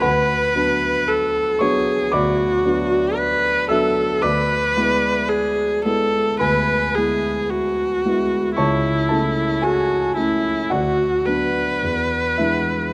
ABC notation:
X:1
M:4/4
L:1/8
Q:1/4=56
K:Emix
V:1 name="Viola"
B2 A G F2 B A | B2 G A B G F2 | E2 F E F B3 |]
V:2 name="Grand piano"
[Bfb]3 [cc'] [dbd']3 [ee'] | [dbd']4 [Bgb]2 z2 | [cac'] [Aa] [Gg]2 [Fdf]3 [Ee] |]
V:3 name="Grand piano"
D,, [F,B,D]2 [F,B,D] D,, [F,B,D]2 [F,B,D] | D,, [G,B,E]2 [G,B,E] D,, [G,B,E]2 [G,B,E] | C,, [A,CE]2 [A,CE] D,, [F,B,D] E,, [E,G,D] |]